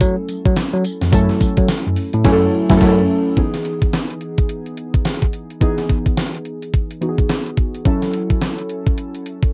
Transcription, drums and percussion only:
0.00 kick, closed hi-hat, tambourine
0.28 closed hi-hat, tambourine
0.46 kick, closed hi-hat
0.56 snare, closed hi-hat, tambourine
0.85 closed hi-hat, tambourine
1.01 snare, closed hi-hat
1.13 kick, closed hi-hat, tambourine
1.29 snare
1.41 kick, closed hi-hat, tambourine
1.57 kick, closed hi-hat
1.68 snare, closed hi-hat, tambourine
1.96 open hi-hat
2.13 closed hi-hat
2.24 kick, snare, crash
2.70 kick, snare
2.81 kick, snare, crash
3.37 kick, closed hi-hat
3.54 snare, closed hi-hat
3.65 closed hi-hat
3.82 kick, closed hi-hat
3.93 snare, closed hi-hat
4.10 closed hi-hat
4.21 closed hi-hat
4.38 kick, closed hi-hat
4.49 closed hi-hat
4.66 closed hi-hat
4.77 closed hi-hat
4.94 kick, closed hi-hat
5.05 snare, closed hi-hat
5.22 kick, closed hi-hat
5.33 closed hi-hat
5.50 closed hi-hat
5.61 kick, closed hi-hat
5.78 snare, closed hi-hat
5.89 kick, closed hi-hat
6.06 kick, closed hi-hat
6.17 snare, closed hi-hat
6.35 closed hi-hat
6.45 closed hi-hat
6.62 closed hi-hat
6.74 kick, closed hi-hat
6.91 closed hi-hat
7.02 closed hi-hat
7.18 kick, closed hi-hat
7.29 snare, closed hi-hat
7.46 closed hi-hat
7.57 kick, closed hi-hat
7.75 closed hi-hat
7.85 kick, closed hi-hat
8.02 snare, closed hi-hat
8.14 closed hi-hat
8.30 kick, closed hi-hat
8.41 snare, closed hi-hat
8.58 closed hi-hat
8.69 closed hi-hat
8.87 kick, closed hi-hat
8.98 closed hi-hat
9.15 closed hi-hat
9.26 closed hi-hat
9.43 kick, closed hi-hat

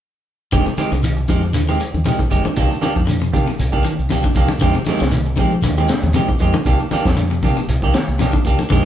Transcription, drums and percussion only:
0.52 kick, closed hi-hat, shekere
0.67 shekere
0.77 closed hi-hat, high conga, shekere
0.92 closed hi-hat, shekere
1.03 closed hi-hat, shekere
1.16 shekere
1.28 kick, closed hi-hat, high conga, shekere
1.42 shekere
1.53 closed hi-hat, shekere
1.68 closed hi-hat, shekere
1.80 closed hi-hat, shekere
1.94 high conga, shekere
2.05 closed hi-hat, high conga, shekere
2.19 kick, closed hi-hat, shekere
2.30 kick, closed hi-hat, high conga, shekere
2.44 high conga, shekere
2.56 kick, closed hi-hat, shekere
2.71 shekere
2.82 closed hi-hat, high conga, shekere
2.96 kick, shekere
3.08 closed hi-hat, shekere
3.23 shekere
3.34 kick, closed hi-hat, high conga, shekere
3.47 closed hi-hat, shekere
3.59 closed hi-hat, shekere
3.73 kick, shekere
3.85 closed hi-hat, shekere
3.99 shekere
4.10 closed hi-hat, high conga, shekere
4.24 kick, closed hi-hat, shekere
4.34 kick, closed hi-hat, high conga, shekere
4.48 closed hi-hat, high conga, shekere
4.58 kick, closed hi-hat, shekere
4.73 shekere
4.85 snare, closed hi-hat, high conga, shekere
4.99 snare, closed hi-hat, shekere
5.12 closed hi-hat, shekere
5.25 shekere
5.36 kick, closed hi-hat, high conga, shekere
5.51 shekere
5.62 closed hi-hat, shekere
5.77 closed hi-hat, shekere
5.88 snare, closed hi-hat, shekere
6.01 high conga, shekere
6.13 closed hi-hat, high conga, shekere
6.27 kick, closed hi-hat, shekere
6.39 kick, closed hi-hat, shekere
6.54 high conga, shekere
6.65 kick, closed hi-hat, shekere
6.79 shekere
6.91 closed hi-hat, high conga, shekere
7.06 kick, snare, shekere
7.17 closed hi-hat, shekere
7.32 shekere
7.43 kick, closed hi-hat, high conga, shekere
7.57 closed hi-hat, shekere
7.69 closed hi-hat, shekere
7.82 kick, shekere
7.94 snare, closed hi-hat, shekere
8.09 shekere
8.20 snare, closed hi-hat, high conga, shekere
8.33 kick, closed hi-hat, shekere
8.44 kick, closed hi-hat, shekere
8.59 closed hi-hat, high conga, shekere
8.70 kick, snare, closed hi-hat, shekere

